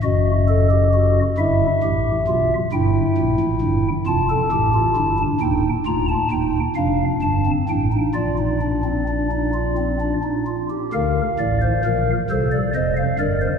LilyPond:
<<
  \new Staff \with { instrumentName = "Pipe organ" } { \time 6/8 \key f \major \tempo 4. = 44 << { dis''4. e''4. | g''4. a''4. | \key bes \major g''8 bes''16 a''16 g''8 f''8 a''8 g''8 | d''2~ d''8 r8 |
f''4. c''16 d''16 ees''16 f''16 d''16 c''16 | } \\ { fis'8 a'16 g'16 fis'8 e'8 g'8 f'8 | e'4. f'16 a'16 g'16 f'16 e'16 d'16 | ees'8 f'8 ees'8 d'8. c'16 d'16 ees'16 | f'16 ees'16 d'16 c'16 d'16 ees'16 f'16 c'16 d'16 ees'16 f'16 g'16 |
bes'8 d''16 c''16 bes'8 a'8 c''8 bes'8 | } >> }
  \new Staff \with { instrumentName = "Pipe organ" } { \clef bass \time 6/8 \key f \major <fis,, fis,>4. <g,, g,>8 <a,, a,>8 <b,, b,>8 | <g,, g,>8 <bes,, bes,>16 <a,, a,>16 <g,, g,>8 <f,, f,>8 <a,, a,>8 <g,, g,>8 | \key bes \major <ees,, ees,>8 <d,, d,>8 <ees,, ees,>8 <f,, f,>8 <g,, g,>8 <a,, a,>8 | <bes,, bes,>2~ <bes,, bes,>8 r8 |
<d, d>8 <a,, a,>8 <bes,, bes,>8 <c, c>8 <f,, f,>8 <g,, g,>8 | }
>>